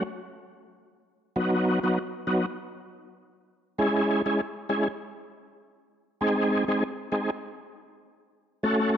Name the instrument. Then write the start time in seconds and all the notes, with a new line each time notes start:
tonewheel organ
1.36 F#3 B3 D#4 F#4
1.83 F#3 B3 D#4 F#4
2.27 F#3 B3 D#4 F#4
3.78 G#3 C#4 E4 G#4
4.26 G#3 C#4 E4 G#4
4.69 G#3 C#4 E4 G#4
6.21 G#3 C4 D#4 G#4
6.68 G#3 C4 D#4 G#4
7.12 G#3 C4 D#4 G#4
8.63 A3 C#4 F#4 A4